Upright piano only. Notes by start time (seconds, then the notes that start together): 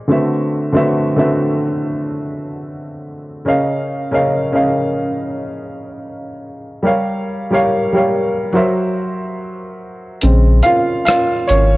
0.08 D3 A3 C4 F#4 B4
0.12 E5
0.72 D3 A3 C4 F#4 B4
0.77 E5
1.16 D3 A3 C4 F#4 B4 E5
3.45 C#3 C#4 A#4 D#5 F5
4.11 C#3 C#4 A#4 D#5 F5
4.52 C#3 C#4 A#4 D#5 F5
6.83 G3 G4 A#4 C#5 F5
7.50 G3 G4 A#4 C#5 F5
7.93 G3 G4 A#4 C#5 F5
8.52 F#3 F#4 A#4 C5
8.57 E5
10.22 C#3 G#3 C4
10.63 F4 F5
11.05 F4 F5
11.47 C#4 C#5